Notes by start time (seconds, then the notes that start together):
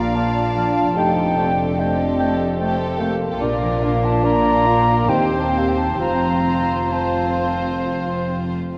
Already playing: A#1 A#2 F3 D4 F4 A#4 D5 F5 A#5
0.13 A#3 F4 F5 A5
0.35 D4
0.55 F3 A#3 F5
0.77 D4
0.96 F1 F2 A3 C4 D#4 G4 A4 G5
1.17 C3
1.36 A3 C4 D4 G5
1.57 G4
1.77 A3 C4 G4 A4 D#5 G5
1.98 C5
2.19 A3 G5
2.39 A4
2.58 A3 C4 G4 G5
2.80 C4
2.99 C3 A3 A#3 G5
3.21 C4
3.40 A#1 A#2 A#3 D4 F4 A#4 D5
3.62 F3
3.83 D4 F5
4.05 F4 A5
4.24 A#3 D4 F4 A#4 D5 A#5
4.46 D5
4.66 F4 F5
4.87 A#4
5.08 D#2 D#3 C4 D#4 G4 C5 G5
5.30 D#4
5.40 A5
5.49 C4 G5
5.58 F5
5.69 G5
5.75 G4 A5
5.98 F1 F2 F3 C4 F4 C5 A#5
6.67 C5
6.90 C4 F4 C5 A5
7.13 F5
7.36 C6
7.59 C5
7.83 F4
8.06 C4
8.30 F4
8.54 C4